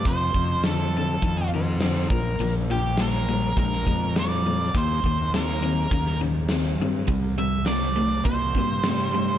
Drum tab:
HH |x---x---x---x---|x---x---x---x---|x---x---x---x---|x---x---x---x---|
SD |----o-------o---|----o----o--o---|----o----o--o---|----o-------o---|
BD |o-o-----o-----o-|--------o-o-----|o-o-----o-------|o-------o-o-----|